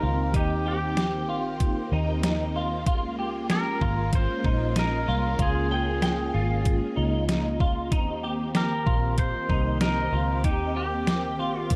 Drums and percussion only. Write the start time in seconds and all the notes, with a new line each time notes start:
0.34 kick, closed hi-hat
0.97 snare, closed hi-hat
1.60 kick, closed hi-hat
2.23 snare, closed hi-hat
2.86 kick, closed hi-hat
3.50 snare, closed hi-hat
3.81 kick
4.13 kick, closed hi-hat
4.44 kick
4.76 snare, closed hi-hat
5.39 kick, closed hi-hat
6.02 snare, closed hi-hat
6.65 kick, closed hi-hat
7.29 snare, closed hi-hat
7.60 kick
7.92 kick, closed hi-hat
8.55 snare, closed hi-hat
8.87 kick
9.18 kick, closed hi-hat
9.49 kick
9.81 snare, closed hi-hat
10.44 kick, closed hi-hat
11.07 snare, closed hi-hat
11.70 kick, closed hi-hat